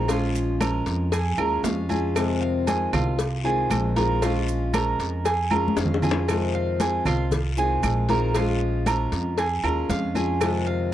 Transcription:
Already playing: upright bass A#1
0.08 steel-string acoustic guitar F3 G#3 C#4 F4, cuban tres F4, cowbell, low agogo, long guiro, maracas
0.35 high conga, maracas
0.60 steel-string acoustic guitar F3 G#3 C#4 F4, cuban tres A#4, cowbell, high conga, low agogo, short guiro, claves, maracas
0.86 upright bass F2, cowbell, high conga, short guiro, maracas
1.12 cuban tres G#4, muted steel-string acoustic guitar stroke, cowbell, high conga, low agogo, long guiro, maracas
1.37 upright bass D#2, steel-string acoustic guitar G#3 C#4 F4, cuban tres A#4, high conga, low agogo, claves
1.63 upright bass F2, steel-string acoustic guitar F3 G#3 C#4 F4, cuban tres F5, cowbell, high conga, low timbale, short guiro, maracas
1.89 steel-string acoustic guitar G#3 C#4 F4, cuban tres G#4, high conga, low agogo, short guiro, maracas
2.15 steel-string acoustic guitar C3 D#3 G#3 C4 F4, cowbell, high conga, low agogo, long guiro, claves, maracas
2.41 cuban tres F5, high conga
2.67 steel-string acoustic guitar D#3 G#3 C4 F4, cuban tres G#4, cowbell, high conga, low agogo, short guiro, maracas
2.93 upright bass C2, cuban tres F4, cowbell, high conga, low conga, low agogo, short guiro, claves, maracas
3.19 muted steel-string acoustic guitar stroke, cowbell, high conga, long guiro, maracas
3.44 steel-string acoustic guitar D#3 G#3 C4 F4, cuban tres G#4, high conga
3.70 upright bass A#1, steel-string acoustic guitar D#3 G#3 C4 F4, cowbell, high conga, low agogo, short guiro, claves, maracas
3.96 steel-string acoustic guitar D#3 G#3 C4 F4, cuban tres A#4, cowbell, high conga, short guiro, maracas
4.22 steel-string acoustic guitar F3 G#3 C#4 F4, cuban tres F4, cowbell, low agogo, long guiro, maracas
4.48 high conga, maracas
4.74 steel-string acoustic guitar F3 G#3 C#4 F4, cuban tres A#4, cowbell, high conga, low agogo, short guiro, claves, maracas
4.99 upright bass F2, cowbell, high conga, short guiro, maracas
5.25 cuban tres G#4, muted steel-string acoustic guitar stroke, cowbell, high conga, low agogo, long guiro, maracas
5.51 steel-string acoustic guitar G#3 C#4 F4, cuban tres A#4, high conga, low agogo, claves
5.68 high conga
5.76 upright bass F2, steel-string acoustic guitar F3 G#3 C#4 F4, cuban tres F5, cowbell, high bongo, short guiro, maracas
5.85 low conga
5.94 high bongo
6.02 steel-string acoustic guitar G#3 C#4 F4, cuban tres G#4, low conga, low agogo, short guiro, maracas
6.11 low bongo
6.28 steel-string acoustic guitar C3 D#3 G#3 C4 F4, cowbell, high conga, low agogo, long guiro, claves, maracas
6.54 cuban tres F5, high conga
6.80 steel-string acoustic guitar D#3 G#3 C4 F4, cuban tres G#4, cowbell, high conga, low agogo, short guiro, maracas
7.05 upright bass C2, cuban tres F4, cowbell, high conga, low conga, low agogo, short guiro, claves, maracas
7.31 muted steel-string acoustic guitar stroke, cowbell, high conga, low conga, long guiro, maracas
7.57 steel-string acoustic guitar D#3 G#3 C4 F4, cuban tres G#4, high conga, maracas
7.83 upright bass A#1, steel-string acoustic guitar D#3 G#3 C4 F4, cowbell, high conga, low agogo, short guiro, claves, maracas
8.09 steel-string acoustic guitar D#3 G#3 C4 F4, cuban tres A#4, cowbell, high conga, short guiro, maracas
8.35 steel-string acoustic guitar F3 G#3 C#4 F4, cuban tres F4, cowbell, high conga, low agogo, long guiro, maracas
8.61 high conga
8.86 steel-string acoustic guitar F3 G#3 C#4 F4, cuban tres A#4, cowbell, high conga, low agogo, short guiro, claves, maracas
9.12 upright bass F2, cowbell, high conga, short guiro, maracas
9.38 cuban tres G#4, muted steel-string acoustic guitar stroke, cowbell, high conga, low agogo, long guiro, maracas
9.64 upright bass D#2, steel-string acoustic guitar G#3 C#4 F4, cuban tres A#4, high conga, low agogo, claves
9.89 upright bass F2, steel-string acoustic guitar F3 G#3 C#4 F4, cuban tres F5, cowbell, high conga, short guiro, maracas
10.15 steel-string acoustic guitar G#3 C#4 F4, cuban tres G#4, high conga, low agogo, short guiro, maracas
10.41 steel-string acoustic guitar C3 D#3 G#3 C4 F4, cowbell, high conga, low agogo, long guiro, claves, maracas
10.67 cuban tres F5, high conga

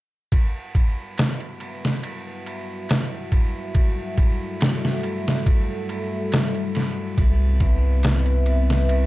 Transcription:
0.32 analog synth pad G3 F#4 B4 E5, kick, ride
0.75 kick, ride
1.18 snare, ride
1.40 ride
1.60 ride
1.85 snare
2.03 ride
2.46 ride
2.89 snare, ride
3.32 kick, ride
3.75 analog synth pad A4, kick, ride
4.18 kick, ride
4.61 snare, ride
4.85 snare
5.03 ride
5.28 snare
5.46 kick, ride
5.89 ride
6.32 snare, ride
6.55 ride
6.75 snare, ride
7.18 sub bass C2, analog synth pad C4 B4 E5, kick, ride
7.60 kick, ride
8.03 snare, ride
8.26 ride
8.46 ride
8.70 snare
8.89 ride

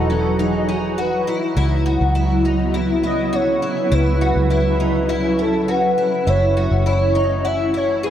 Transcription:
Already playing: fingered electric bass E1, ambient pad E3 F#3 D#4 F#4, soft synth lead A4
0.10 twelve-string acoustic guitar C#4
0.39 twelve-string acoustic guitar D#4, soft synth lead G#4
0.69 twelve-string acoustic guitar D#4
0.98 twelve-string acoustic guitar F#4, soft synth lead B4
1.27 twelve-string acoustic guitar E4
1.56 fingered electric bass C#2, ambient pad C#3 B3 E4, twelve-string acoustic guitar E4
1.86 twelve-string acoustic guitar F#4
2.01 fingered electric bass C#2
2.15 twelve-string acoustic guitar E4
2.45 twelve-string acoustic guitar D#4
2.74 twelve-string acoustic guitar E4
3.04 twelve-string acoustic guitar E4, soft synth lead D#5
3.33 twelve-string acoustic guitar F#4, soft synth lead C#5
3.62 twelve-string acoustic guitar E4
3.92 fingered electric bass C#2, ambient pad C#4, twelve-string acoustic guitar E4, soft synth lead B4
4.21 twelve-string acoustic guitar F#4
4.36 fingered electric bass C#2
4.50 twelve-string acoustic guitar E4
4.80 twelve-string acoustic guitar D#4
5.09 twelve-string acoustic guitar E4
5.39 twelve-string acoustic guitar E4, soft synth lead A4
5.68 twelve-string acoustic guitar F#4, soft synth lead B4
5.98 twelve-string acoustic guitar E4
6.27 fingered electric bass F#1, ambient pad E3 A3 C#4 F#4, twelve-string acoustic guitar E4, soft synth lead C#5, synth bell E5
6.57 twelve-string acoustic guitar F#4
6.71 fingered electric bass F#1
6.86 twelve-string acoustic guitar E4, soft synth lead C#5
7.15 twelve-string acoustic guitar D#4
7.45 twelve-string acoustic guitar E4, soft synth lead E5, synth bell F#5
7.74 twelve-string acoustic guitar E4, soft synth lead C#5
8.03 twelve-string acoustic guitar G#4, soft synth lead B4

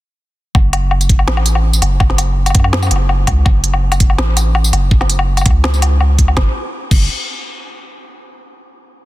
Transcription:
0.55 808-style bass F#1, kick, low woodblock
0.73 closed hi-hat, low woodblock
0.91 low woodblock
1.01 closed hi-hat, tambourine
1.09 kick, closed hi-hat
1.19 low woodblock
1.27 808-style bass A1, snare
1.37 low woodblock
1.46 closed hi-hat, tambourine
1.55 low woodblock
1.73 tambourine
1.82 808-style bass F#1, closed hi-hat, low woodblock
2.00 kick, low woodblock
2.10 snare
2.18 closed hi-hat, tambourine, low woodblock
2.46 closed hi-hat, tambourine, low woodblock
2.50 low woodblock
2.55 808-style bass F#2, kick, closed hi-hat, low woodblock
2.60 low woodblock
2.64 low woodblock
2.73 snare
2.83 tambourine, low woodblock
2.87 low woodblock
2.91 808-style bass F#1, closed hi-hat, low woodblock
2.96 low woodblock
3.09 low woodblock
3.27 808-style bass C#2, kick, closed hi-hat, low woodblock
3.46 808-style bass F#1, kick, low woodblock
3.64 closed hi-hat
3.74 low woodblock
3.92 closed hi-hat, tambourine, low woodblock
4.00 kick, closed hi-hat
4.10 low woodblock
4.18 808-style bass A1, snare
4.37 closed hi-hat, tambourine, low woodblock
4.55 low woodblock
4.64 tambourine
4.73 808-style bass F#1, closed hi-hat, low woodblock
4.91 kick
5.01 snare, low woodblock
5.10 closed hi-hat, tambourine
5.19 low woodblock
5.37 closed hi-hat, tambourine, low woodblock
5.41 low woodblock
5.46 808-style bass C#2, kick, closed hi-hat, low woodblock
5.50 low woodblock
5.64 snare, low woodblock
5.74 tambourine
5.82 closed hi-hat, low woodblock
6.01 low woodblock
6.18 kick, closed hi-hat
6.28 low woodblock
6.37 808-style bass F#1, kick, snare
6.91 808-style bass F#1, kick, crash

